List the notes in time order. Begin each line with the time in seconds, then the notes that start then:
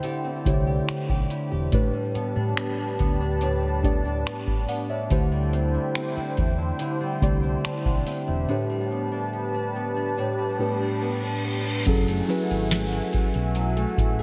Already playing: D3 A3 C4 D4 E4 G4 C5 G5
0.03 D3 G4, closed hi-hat
0.24 C4
0.45 C2 D3 A3 E4 G4 C#5, kick, closed hi-hat
0.54 D5
0.67 G4
0.88 E4, finger snap, muted fingered electric bass stroke, closed hi-hat
1.09 B1 G4, kick
1.30 E4, closed hi-hat
1.51 E1 G4
1.72 A1 A2 A3 D4 G4 B4 A5, kick, closed hi-hat
1.93 G3
2.15 B3, muted fingered electric bass stroke, closed hi-hat
2.36 A2 D4
2.57 B3, finger snap, closed hi-hat
2.78 D4
2.99 D2 B3, kick, closed hi-hat
3.21 D4
3.41 A2 D4, closed hi-hat
3.63 G3
3.83 A2 A3 B3 D4 G4 D5, kick, closed hi-hat
4.05 D4
4.26 B3, finger snap, closed hi-hat
4.47 D4 B4 D5, kick
4.68 B3 D5 F#5, open hi-hat
4.89 D4 C#5 E5
5.10 D2 D3 A3 E4 G4 C5 G5, kick, closed hi-hat
5.32 G3
5.53 C4, closed hi-hat
5.74 E4
5.95 C4, finger snap, closed hi-hat
6.16 E4, muted fingered electric bass stroke
6.37 E2 C4, kick, closed hi-hat
6.58 E4
6.79 D3 E4, closed hi-hat
7.01 G3
7.21 C2 D3 A3 C4 E4 G4 D5, kick, closed hi-hat
7.43 E4
7.64 C4 A5 C6, finger snap, muted fingered electric bass stroke, closed hi-hat
7.85 B1 E4 F#5 A5, kick
8.07 C4 E5 G5, open hi-hat
8.28 E1 E4 C5 E5
8.48 A2 A3 D4 G4 B4 A5
8.70 G3
8.91 B3
9.12 D4
9.33 B3
9.54 D4
9.75 B3
9.97 D4
10.18 A2 D4, reverse cymbal
10.39 G3
10.59 A2 A3 B3 D4 G4 B4
10.81 D4
11.02 B3
11.23 D4
11.45 B3
11.65 D4
11.86 F#1 F#3 C#4 E4 F#4 G#4 A4 E5 F#5 G#5, kick, closed hi-hat, downlifter
12.07 A3, closed hi-hat
12.28 F#3 C#4 E4 G#4 B4, closed hi-hat
12.50 G#1 G#4, closed hi-hat
12.71 A3, snare, closed hi-hat
12.92 E4, closed hi-hat
13.13 A3, muted fingered electric bass stroke, kick, closed hi-hat
13.34 B1 E4, closed hi-hat
13.55 F#3, closed hi-hat
13.77 A3, closed hi-hat
13.97 A1 E4, kick, closed hi-hat
14.19 G#4